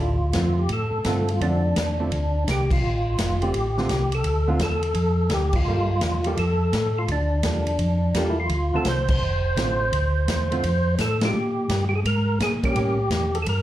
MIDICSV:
0, 0, Header, 1, 5, 480
1, 0, Start_track
1, 0, Key_signature, -1, "minor"
1, 0, Tempo, 354820
1, 1902, Time_signature, 4, 2, 24, 8
1, 18426, End_track
2, 0, Start_track
2, 0, Title_t, "Tonewheel organ"
2, 0, Program_c, 0, 16
2, 0, Note_on_c, 0, 65, 63
2, 799, Note_on_c, 0, 67, 66
2, 826, Note_off_c, 0, 65, 0
2, 958, Note_off_c, 0, 67, 0
2, 983, Note_on_c, 0, 69, 75
2, 1761, Note_on_c, 0, 65, 70
2, 1780, Note_off_c, 0, 69, 0
2, 1904, Note_off_c, 0, 65, 0
2, 1925, Note_on_c, 0, 62, 85
2, 3301, Note_off_c, 0, 62, 0
2, 3393, Note_on_c, 0, 67, 84
2, 3662, Note_off_c, 0, 67, 0
2, 3687, Note_on_c, 0, 65, 76
2, 4628, Note_on_c, 0, 67, 86
2, 4662, Note_off_c, 0, 65, 0
2, 5610, Note_on_c, 0, 69, 85
2, 5613, Note_off_c, 0, 67, 0
2, 6070, Note_on_c, 0, 65, 88
2, 6089, Note_off_c, 0, 69, 0
2, 6236, Note_off_c, 0, 65, 0
2, 6261, Note_on_c, 0, 69, 89
2, 7211, Note_on_c, 0, 67, 92
2, 7232, Note_off_c, 0, 69, 0
2, 7519, Note_on_c, 0, 65, 91
2, 7522, Note_off_c, 0, 67, 0
2, 8474, Note_on_c, 0, 67, 87
2, 8498, Note_off_c, 0, 65, 0
2, 8623, Note_off_c, 0, 67, 0
2, 8646, Note_on_c, 0, 69, 91
2, 9449, Note_on_c, 0, 65, 79
2, 9453, Note_off_c, 0, 69, 0
2, 9606, Note_off_c, 0, 65, 0
2, 9630, Note_on_c, 0, 62, 82
2, 11046, Note_on_c, 0, 67, 91
2, 11090, Note_off_c, 0, 62, 0
2, 11224, Note_on_c, 0, 64, 72
2, 11231, Note_off_c, 0, 67, 0
2, 11343, Note_off_c, 0, 64, 0
2, 11361, Note_on_c, 0, 65, 77
2, 11844, Note_off_c, 0, 65, 0
2, 11849, Note_on_c, 0, 69, 96
2, 12002, Note_on_c, 0, 72, 98
2, 12005, Note_off_c, 0, 69, 0
2, 12296, Note_off_c, 0, 72, 0
2, 12313, Note_on_c, 0, 72, 102
2, 14815, Note_off_c, 0, 72, 0
2, 14898, Note_on_c, 0, 69, 92
2, 15173, Note_off_c, 0, 69, 0
2, 15219, Note_on_c, 0, 67, 90
2, 16024, Note_off_c, 0, 67, 0
2, 16083, Note_on_c, 0, 67, 69
2, 16148, Note_off_c, 0, 67, 0
2, 16169, Note_on_c, 0, 68, 76
2, 16236, Note_off_c, 0, 68, 0
2, 16317, Note_on_c, 0, 70, 89
2, 16755, Note_off_c, 0, 70, 0
2, 16808, Note_on_c, 0, 68, 96
2, 16943, Note_off_c, 0, 68, 0
2, 17118, Note_on_c, 0, 67, 90
2, 18061, Note_on_c, 0, 69, 83
2, 18092, Note_off_c, 0, 67, 0
2, 18104, Note_off_c, 0, 69, 0
2, 18160, Note_on_c, 0, 69, 68
2, 18221, Note_off_c, 0, 69, 0
2, 18248, Note_on_c, 0, 70, 78
2, 18426, Note_off_c, 0, 70, 0
2, 18426, End_track
3, 0, Start_track
3, 0, Title_t, "Hollow-body jazz guitar"
3, 0, Program_c, 1, 26
3, 479, Note_on_c, 1, 50, 49
3, 485, Note_on_c, 1, 57, 56
3, 499, Note_on_c, 1, 60, 53
3, 499, Note_on_c, 1, 65, 61
3, 752, Note_off_c, 1, 50, 0
3, 755, Note_off_c, 1, 57, 0
3, 762, Note_off_c, 1, 60, 0
3, 762, Note_off_c, 1, 65, 0
3, 1435, Note_on_c, 1, 50, 58
3, 1442, Note_on_c, 1, 57, 72
3, 1451, Note_on_c, 1, 60, 70
3, 1457, Note_on_c, 1, 65, 73
3, 1711, Note_off_c, 1, 50, 0
3, 1714, Note_off_c, 1, 57, 0
3, 1718, Note_off_c, 1, 60, 0
3, 1722, Note_off_c, 1, 65, 0
3, 1911, Note_on_c, 1, 50, 63
3, 1912, Note_on_c, 1, 57, 60
3, 1924, Note_on_c, 1, 60, 61
3, 1925, Note_on_c, 1, 65, 65
3, 2189, Note_off_c, 1, 50, 0
3, 2190, Note_off_c, 1, 57, 0
3, 2196, Note_off_c, 1, 60, 0
3, 2196, Note_off_c, 1, 65, 0
3, 2704, Note_on_c, 1, 57, 60
3, 2706, Note_on_c, 1, 60, 58
3, 2708, Note_on_c, 1, 50, 49
3, 2716, Note_on_c, 1, 65, 57
3, 2850, Note_off_c, 1, 57, 0
3, 2851, Note_off_c, 1, 60, 0
3, 2853, Note_off_c, 1, 50, 0
3, 2856, Note_off_c, 1, 65, 0
3, 4633, Note_on_c, 1, 50, 62
3, 4637, Note_on_c, 1, 57, 55
3, 4641, Note_on_c, 1, 60, 58
3, 4648, Note_on_c, 1, 65, 58
3, 4776, Note_off_c, 1, 50, 0
3, 4778, Note_off_c, 1, 57, 0
3, 4780, Note_off_c, 1, 60, 0
3, 4783, Note_off_c, 1, 65, 0
3, 5111, Note_on_c, 1, 50, 73
3, 5124, Note_on_c, 1, 57, 74
3, 5130, Note_on_c, 1, 60, 79
3, 5133, Note_on_c, 1, 65, 73
3, 5255, Note_off_c, 1, 50, 0
3, 5262, Note_off_c, 1, 57, 0
3, 5264, Note_off_c, 1, 60, 0
3, 5266, Note_off_c, 1, 65, 0
3, 6055, Note_on_c, 1, 57, 67
3, 6057, Note_on_c, 1, 50, 72
3, 6068, Note_on_c, 1, 60, 68
3, 6073, Note_on_c, 1, 65, 78
3, 6207, Note_off_c, 1, 57, 0
3, 6208, Note_off_c, 1, 50, 0
3, 6214, Note_off_c, 1, 60, 0
3, 6216, Note_off_c, 1, 65, 0
3, 7686, Note_on_c, 1, 55, 57
3, 7686, Note_on_c, 1, 58, 58
3, 7692, Note_on_c, 1, 65, 53
3, 7696, Note_on_c, 1, 69, 54
3, 7959, Note_off_c, 1, 55, 0
3, 7959, Note_off_c, 1, 58, 0
3, 7962, Note_off_c, 1, 65, 0
3, 7964, Note_off_c, 1, 69, 0
3, 8471, Note_on_c, 1, 55, 61
3, 8478, Note_on_c, 1, 58, 55
3, 8481, Note_on_c, 1, 65, 61
3, 8495, Note_on_c, 1, 69, 65
3, 8616, Note_off_c, 1, 55, 0
3, 8619, Note_off_c, 1, 58, 0
3, 8621, Note_off_c, 1, 65, 0
3, 8628, Note_off_c, 1, 69, 0
3, 10059, Note_on_c, 1, 55, 42
3, 10067, Note_on_c, 1, 58, 46
3, 10067, Note_on_c, 1, 65, 45
3, 10081, Note_on_c, 1, 69, 55
3, 10345, Note_off_c, 1, 55, 0
3, 10349, Note_off_c, 1, 58, 0
3, 10349, Note_off_c, 1, 65, 0
3, 10356, Note_off_c, 1, 69, 0
3, 11033, Note_on_c, 1, 55, 61
3, 11041, Note_on_c, 1, 58, 75
3, 11049, Note_on_c, 1, 69, 77
3, 11050, Note_on_c, 1, 65, 74
3, 11312, Note_off_c, 1, 55, 0
3, 11316, Note_off_c, 1, 58, 0
3, 11319, Note_off_c, 1, 69, 0
3, 11320, Note_off_c, 1, 65, 0
3, 11821, Note_on_c, 1, 50, 69
3, 11833, Note_on_c, 1, 57, 61
3, 11835, Note_on_c, 1, 60, 76
3, 11844, Note_on_c, 1, 65, 81
3, 11970, Note_off_c, 1, 50, 0
3, 11976, Note_off_c, 1, 57, 0
3, 11977, Note_off_c, 1, 60, 0
3, 11981, Note_off_c, 1, 65, 0
3, 12939, Note_on_c, 1, 50, 53
3, 12941, Note_on_c, 1, 57, 52
3, 12950, Note_on_c, 1, 60, 65
3, 12960, Note_on_c, 1, 65, 58
3, 13224, Note_off_c, 1, 50, 0
3, 13225, Note_off_c, 1, 57, 0
3, 13229, Note_off_c, 1, 60, 0
3, 13234, Note_off_c, 1, 65, 0
3, 14222, Note_on_c, 1, 57, 68
3, 14226, Note_on_c, 1, 50, 59
3, 14237, Note_on_c, 1, 60, 67
3, 14237, Note_on_c, 1, 65, 70
3, 14369, Note_off_c, 1, 57, 0
3, 14371, Note_off_c, 1, 50, 0
3, 14377, Note_off_c, 1, 60, 0
3, 14377, Note_off_c, 1, 65, 0
3, 15192, Note_on_c, 1, 56, 56
3, 15210, Note_on_c, 1, 62, 59
3, 15216, Note_on_c, 1, 65, 65
3, 15334, Note_off_c, 1, 56, 0
3, 15343, Note_off_c, 1, 62, 0
3, 15346, Note_off_c, 1, 65, 0
3, 17095, Note_on_c, 1, 55, 76
3, 17097, Note_on_c, 1, 58, 80
3, 17103, Note_on_c, 1, 61, 72
3, 17243, Note_off_c, 1, 55, 0
3, 17245, Note_off_c, 1, 58, 0
3, 17248, Note_off_c, 1, 61, 0
3, 17259, Note_on_c, 1, 55, 55
3, 17276, Note_on_c, 1, 58, 62
3, 17281, Note_on_c, 1, 61, 67
3, 17541, Note_off_c, 1, 55, 0
3, 17549, Note_off_c, 1, 58, 0
3, 17552, Note_off_c, 1, 61, 0
3, 18426, End_track
4, 0, Start_track
4, 0, Title_t, "Tonewheel organ"
4, 0, Program_c, 2, 16
4, 0, Note_on_c, 2, 33, 68
4, 0, Note_on_c, 2, 38, 86
4, 272, Note_off_c, 2, 33, 0
4, 445, Note_off_c, 2, 38, 0
4, 451, Note_on_c, 2, 41, 81
4, 922, Note_off_c, 2, 41, 0
4, 933, Note_on_c, 2, 45, 77
4, 1226, Note_off_c, 2, 45, 0
4, 1242, Note_on_c, 2, 45, 38
4, 1328, Note_off_c, 2, 45, 0
4, 1414, Note_on_c, 2, 43, 76
4, 1884, Note_off_c, 2, 43, 0
4, 1895, Note_on_c, 2, 41, 82
4, 2364, Note_off_c, 2, 41, 0
4, 2379, Note_on_c, 2, 40, 81
4, 2847, Note_off_c, 2, 40, 0
4, 2859, Note_on_c, 2, 38, 78
4, 3327, Note_off_c, 2, 38, 0
4, 3346, Note_on_c, 2, 36, 85
4, 3811, Note_off_c, 2, 36, 0
4, 3822, Note_on_c, 2, 33, 92
4, 4289, Note_off_c, 2, 33, 0
4, 4304, Note_on_c, 2, 29, 87
4, 4771, Note_off_c, 2, 29, 0
4, 4778, Note_on_c, 2, 33, 78
4, 5247, Note_off_c, 2, 33, 0
4, 5263, Note_on_c, 2, 36, 79
4, 5730, Note_off_c, 2, 36, 0
4, 5737, Note_on_c, 2, 38, 89
4, 6207, Note_off_c, 2, 38, 0
4, 6208, Note_on_c, 2, 40, 79
4, 6683, Note_off_c, 2, 40, 0
4, 6692, Note_on_c, 2, 41, 86
4, 7165, Note_off_c, 2, 41, 0
4, 7168, Note_on_c, 2, 38, 82
4, 7643, Note_off_c, 2, 38, 0
4, 7662, Note_on_c, 2, 43, 80
4, 8130, Note_off_c, 2, 43, 0
4, 8133, Note_on_c, 2, 40, 87
4, 8606, Note_off_c, 2, 40, 0
4, 8623, Note_on_c, 2, 41, 79
4, 9091, Note_off_c, 2, 41, 0
4, 9096, Note_on_c, 2, 45, 78
4, 9567, Note_off_c, 2, 45, 0
4, 9580, Note_on_c, 2, 38, 79
4, 10049, Note_off_c, 2, 38, 0
4, 10051, Note_on_c, 2, 40, 91
4, 10524, Note_off_c, 2, 40, 0
4, 10535, Note_on_c, 2, 41, 80
4, 11006, Note_off_c, 2, 41, 0
4, 11019, Note_on_c, 2, 40, 82
4, 11488, Note_off_c, 2, 40, 0
4, 11493, Note_on_c, 2, 38, 79
4, 11790, Note_off_c, 2, 38, 0
4, 11811, Note_on_c, 2, 38, 38
4, 11896, Note_off_c, 2, 38, 0
4, 11973, Note_on_c, 2, 36, 78
4, 12444, Note_off_c, 2, 36, 0
4, 12468, Note_on_c, 2, 29, 86
4, 12932, Note_off_c, 2, 29, 0
4, 12941, Note_on_c, 2, 33, 80
4, 13408, Note_off_c, 2, 33, 0
4, 13423, Note_on_c, 2, 38, 91
4, 13889, Note_off_c, 2, 38, 0
4, 13903, Note_on_c, 2, 40, 83
4, 14368, Note_off_c, 2, 40, 0
4, 14381, Note_on_c, 2, 41, 80
4, 14847, Note_off_c, 2, 41, 0
4, 14858, Note_on_c, 2, 45, 87
4, 15325, Note_off_c, 2, 45, 0
4, 15332, Note_on_c, 2, 46, 81
4, 15802, Note_off_c, 2, 46, 0
4, 15814, Note_on_c, 2, 43, 80
4, 16282, Note_off_c, 2, 43, 0
4, 16297, Note_on_c, 2, 44, 78
4, 16764, Note_off_c, 2, 44, 0
4, 16779, Note_on_c, 2, 46, 78
4, 17244, Note_off_c, 2, 46, 0
4, 17245, Note_on_c, 2, 45, 86
4, 17717, Note_off_c, 2, 45, 0
4, 17725, Note_on_c, 2, 40, 82
4, 18196, Note_off_c, 2, 40, 0
4, 18210, Note_on_c, 2, 43, 89
4, 18426, Note_off_c, 2, 43, 0
4, 18426, End_track
5, 0, Start_track
5, 0, Title_t, "Drums"
5, 448, Note_on_c, 9, 44, 51
5, 448, Note_on_c, 9, 51, 65
5, 451, Note_on_c, 9, 38, 65
5, 456, Note_on_c, 9, 36, 22
5, 583, Note_off_c, 9, 44, 0
5, 583, Note_off_c, 9, 51, 0
5, 586, Note_off_c, 9, 38, 0
5, 592, Note_off_c, 9, 36, 0
5, 931, Note_on_c, 9, 51, 58
5, 935, Note_on_c, 9, 36, 19
5, 1066, Note_off_c, 9, 51, 0
5, 1071, Note_off_c, 9, 36, 0
5, 1412, Note_on_c, 9, 44, 49
5, 1412, Note_on_c, 9, 51, 63
5, 1415, Note_on_c, 9, 38, 65
5, 1419, Note_on_c, 9, 36, 25
5, 1548, Note_off_c, 9, 44, 0
5, 1548, Note_off_c, 9, 51, 0
5, 1550, Note_off_c, 9, 38, 0
5, 1554, Note_off_c, 9, 36, 0
5, 1736, Note_on_c, 9, 51, 47
5, 1872, Note_off_c, 9, 51, 0
5, 1903, Note_on_c, 9, 36, 18
5, 1910, Note_on_c, 9, 51, 51
5, 2038, Note_off_c, 9, 36, 0
5, 2046, Note_off_c, 9, 51, 0
5, 2382, Note_on_c, 9, 36, 19
5, 2382, Note_on_c, 9, 44, 63
5, 2382, Note_on_c, 9, 51, 68
5, 2385, Note_on_c, 9, 38, 67
5, 2517, Note_off_c, 9, 44, 0
5, 2517, Note_off_c, 9, 51, 0
5, 2518, Note_off_c, 9, 36, 0
5, 2520, Note_off_c, 9, 38, 0
5, 2862, Note_on_c, 9, 51, 57
5, 2863, Note_on_c, 9, 36, 21
5, 2997, Note_off_c, 9, 51, 0
5, 2999, Note_off_c, 9, 36, 0
5, 3345, Note_on_c, 9, 36, 22
5, 3349, Note_on_c, 9, 44, 53
5, 3349, Note_on_c, 9, 51, 68
5, 3352, Note_on_c, 9, 38, 58
5, 3481, Note_off_c, 9, 36, 0
5, 3484, Note_off_c, 9, 44, 0
5, 3484, Note_off_c, 9, 51, 0
5, 3487, Note_off_c, 9, 38, 0
5, 3660, Note_on_c, 9, 36, 83
5, 3665, Note_on_c, 9, 49, 75
5, 3796, Note_off_c, 9, 36, 0
5, 3800, Note_off_c, 9, 49, 0
5, 4307, Note_on_c, 9, 44, 58
5, 4307, Note_on_c, 9, 51, 77
5, 4308, Note_on_c, 9, 36, 19
5, 4310, Note_on_c, 9, 38, 69
5, 4443, Note_off_c, 9, 44, 0
5, 4443, Note_off_c, 9, 51, 0
5, 4444, Note_off_c, 9, 36, 0
5, 4445, Note_off_c, 9, 38, 0
5, 4622, Note_on_c, 9, 51, 47
5, 4757, Note_off_c, 9, 51, 0
5, 4787, Note_on_c, 9, 51, 60
5, 4788, Note_on_c, 9, 36, 24
5, 4922, Note_off_c, 9, 51, 0
5, 4923, Note_off_c, 9, 36, 0
5, 5106, Note_on_c, 9, 38, 37
5, 5241, Note_off_c, 9, 38, 0
5, 5264, Note_on_c, 9, 44, 53
5, 5264, Note_on_c, 9, 51, 61
5, 5265, Note_on_c, 9, 36, 23
5, 5267, Note_on_c, 9, 38, 64
5, 5400, Note_off_c, 9, 36, 0
5, 5400, Note_off_c, 9, 44, 0
5, 5400, Note_off_c, 9, 51, 0
5, 5402, Note_off_c, 9, 38, 0
5, 5572, Note_on_c, 9, 51, 50
5, 5707, Note_off_c, 9, 51, 0
5, 5736, Note_on_c, 9, 51, 57
5, 5740, Note_on_c, 9, 36, 17
5, 5871, Note_off_c, 9, 51, 0
5, 5875, Note_off_c, 9, 36, 0
5, 6214, Note_on_c, 9, 44, 64
5, 6214, Note_on_c, 9, 51, 63
5, 6216, Note_on_c, 9, 36, 24
5, 6217, Note_on_c, 9, 38, 65
5, 6349, Note_off_c, 9, 44, 0
5, 6349, Note_off_c, 9, 51, 0
5, 6352, Note_off_c, 9, 36, 0
5, 6352, Note_off_c, 9, 38, 0
5, 6528, Note_on_c, 9, 51, 47
5, 6663, Note_off_c, 9, 51, 0
5, 6689, Note_on_c, 9, 51, 58
5, 6695, Note_on_c, 9, 36, 19
5, 6824, Note_off_c, 9, 51, 0
5, 6830, Note_off_c, 9, 36, 0
5, 7163, Note_on_c, 9, 44, 50
5, 7163, Note_on_c, 9, 51, 64
5, 7166, Note_on_c, 9, 38, 64
5, 7172, Note_on_c, 9, 36, 18
5, 7298, Note_off_c, 9, 44, 0
5, 7298, Note_off_c, 9, 51, 0
5, 7301, Note_off_c, 9, 38, 0
5, 7308, Note_off_c, 9, 36, 0
5, 7477, Note_on_c, 9, 49, 76
5, 7486, Note_on_c, 9, 36, 83
5, 7613, Note_off_c, 9, 49, 0
5, 7622, Note_off_c, 9, 36, 0
5, 8131, Note_on_c, 9, 44, 57
5, 8131, Note_on_c, 9, 51, 65
5, 8133, Note_on_c, 9, 38, 64
5, 8136, Note_on_c, 9, 36, 21
5, 8266, Note_off_c, 9, 44, 0
5, 8266, Note_off_c, 9, 51, 0
5, 8269, Note_off_c, 9, 38, 0
5, 8272, Note_off_c, 9, 36, 0
5, 8443, Note_on_c, 9, 51, 50
5, 8578, Note_off_c, 9, 51, 0
5, 8620, Note_on_c, 9, 36, 20
5, 8621, Note_on_c, 9, 51, 60
5, 8756, Note_off_c, 9, 36, 0
5, 8756, Note_off_c, 9, 51, 0
5, 9102, Note_on_c, 9, 36, 21
5, 9102, Note_on_c, 9, 44, 50
5, 9102, Note_on_c, 9, 51, 65
5, 9105, Note_on_c, 9, 38, 63
5, 9237, Note_off_c, 9, 36, 0
5, 9237, Note_off_c, 9, 44, 0
5, 9237, Note_off_c, 9, 51, 0
5, 9240, Note_off_c, 9, 38, 0
5, 9580, Note_on_c, 9, 51, 53
5, 9583, Note_on_c, 9, 36, 21
5, 9716, Note_off_c, 9, 51, 0
5, 9719, Note_off_c, 9, 36, 0
5, 10051, Note_on_c, 9, 44, 50
5, 10051, Note_on_c, 9, 51, 69
5, 10054, Note_on_c, 9, 38, 73
5, 10059, Note_on_c, 9, 36, 22
5, 10186, Note_off_c, 9, 44, 0
5, 10186, Note_off_c, 9, 51, 0
5, 10189, Note_off_c, 9, 38, 0
5, 10195, Note_off_c, 9, 36, 0
5, 10369, Note_on_c, 9, 51, 49
5, 10504, Note_off_c, 9, 51, 0
5, 10534, Note_on_c, 9, 51, 54
5, 10538, Note_on_c, 9, 36, 23
5, 10669, Note_off_c, 9, 51, 0
5, 10674, Note_off_c, 9, 36, 0
5, 11017, Note_on_c, 9, 44, 63
5, 11017, Note_on_c, 9, 51, 71
5, 11019, Note_on_c, 9, 38, 61
5, 11020, Note_on_c, 9, 36, 21
5, 11152, Note_off_c, 9, 44, 0
5, 11152, Note_off_c, 9, 51, 0
5, 11155, Note_off_c, 9, 36, 0
5, 11155, Note_off_c, 9, 38, 0
5, 11491, Note_on_c, 9, 51, 55
5, 11498, Note_on_c, 9, 36, 20
5, 11626, Note_off_c, 9, 51, 0
5, 11633, Note_off_c, 9, 36, 0
5, 11968, Note_on_c, 9, 44, 63
5, 11968, Note_on_c, 9, 51, 66
5, 11970, Note_on_c, 9, 38, 64
5, 11979, Note_on_c, 9, 36, 22
5, 12103, Note_off_c, 9, 44, 0
5, 12103, Note_off_c, 9, 51, 0
5, 12106, Note_off_c, 9, 38, 0
5, 12115, Note_off_c, 9, 36, 0
5, 12288, Note_on_c, 9, 49, 82
5, 12295, Note_on_c, 9, 36, 88
5, 12423, Note_off_c, 9, 49, 0
5, 12430, Note_off_c, 9, 36, 0
5, 12946, Note_on_c, 9, 36, 19
5, 12949, Note_on_c, 9, 44, 51
5, 12949, Note_on_c, 9, 51, 65
5, 12952, Note_on_c, 9, 38, 65
5, 13081, Note_off_c, 9, 36, 0
5, 13084, Note_off_c, 9, 44, 0
5, 13084, Note_off_c, 9, 51, 0
5, 13087, Note_off_c, 9, 38, 0
5, 13428, Note_on_c, 9, 36, 20
5, 13429, Note_on_c, 9, 51, 63
5, 13563, Note_off_c, 9, 36, 0
5, 13564, Note_off_c, 9, 51, 0
5, 13906, Note_on_c, 9, 44, 65
5, 13906, Note_on_c, 9, 51, 65
5, 13907, Note_on_c, 9, 36, 18
5, 13909, Note_on_c, 9, 38, 72
5, 14042, Note_off_c, 9, 36, 0
5, 14042, Note_off_c, 9, 44, 0
5, 14042, Note_off_c, 9, 51, 0
5, 14044, Note_off_c, 9, 38, 0
5, 14227, Note_on_c, 9, 51, 47
5, 14362, Note_off_c, 9, 51, 0
5, 14383, Note_on_c, 9, 36, 22
5, 14386, Note_on_c, 9, 51, 66
5, 14519, Note_off_c, 9, 36, 0
5, 14521, Note_off_c, 9, 51, 0
5, 14858, Note_on_c, 9, 44, 59
5, 14858, Note_on_c, 9, 51, 61
5, 14861, Note_on_c, 9, 36, 22
5, 14861, Note_on_c, 9, 38, 59
5, 14994, Note_off_c, 9, 44, 0
5, 14994, Note_off_c, 9, 51, 0
5, 14996, Note_off_c, 9, 38, 0
5, 14997, Note_off_c, 9, 36, 0
5, 15167, Note_on_c, 9, 51, 69
5, 15169, Note_on_c, 9, 38, 81
5, 15302, Note_off_c, 9, 51, 0
5, 15305, Note_off_c, 9, 38, 0
5, 15817, Note_on_c, 9, 36, 22
5, 15819, Note_on_c, 9, 44, 48
5, 15819, Note_on_c, 9, 51, 70
5, 15821, Note_on_c, 9, 38, 67
5, 15952, Note_off_c, 9, 36, 0
5, 15954, Note_off_c, 9, 44, 0
5, 15954, Note_off_c, 9, 51, 0
5, 15957, Note_off_c, 9, 38, 0
5, 16300, Note_on_c, 9, 36, 21
5, 16306, Note_on_c, 9, 51, 59
5, 16435, Note_off_c, 9, 36, 0
5, 16441, Note_off_c, 9, 51, 0
5, 16776, Note_on_c, 9, 36, 24
5, 16778, Note_on_c, 9, 44, 57
5, 16778, Note_on_c, 9, 51, 60
5, 16781, Note_on_c, 9, 38, 65
5, 16912, Note_off_c, 9, 36, 0
5, 16913, Note_off_c, 9, 44, 0
5, 16913, Note_off_c, 9, 51, 0
5, 16916, Note_off_c, 9, 38, 0
5, 17090, Note_on_c, 9, 36, 53
5, 17090, Note_on_c, 9, 51, 47
5, 17226, Note_off_c, 9, 36, 0
5, 17226, Note_off_c, 9, 51, 0
5, 17253, Note_on_c, 9, 36, 18
5, 17255, Note_on_c, 9, 51, 57
5, 17389, Note_off_c, 9, 36, 0
5, 17390, Note_off_c, 9, 51, 0
5, 17728, Note_on_c, 9, 44, 58
5, 17728, Note_on_c, 9, 51, 58
5, 17731, Note_on_c, 9, 38, 66
5, 17734, Note_on_c, 9, 36, 18
5, 17863, Note_off_c, 9, 44, 0
5, 17863, Note_off_c, 9, 51, 0
5, 17866, Note_off_c, 9, 38, 0
5, 17869, Note_off_c, 9, 36, 0
5, 18054, Note_on_c, 9, 51, 53
5, 18189, Note_off_c, 9, 51, 0
5, 18211, Note_on_c, 9, 51, 60
5, 18214, Note_on_c, 9, 36, 20
5, 18347, Note_off_c, 9, 51, 0
5, 18349, Note_off_c, 9, 36, 0
5, 18426, End_track
0, 0, End_of_file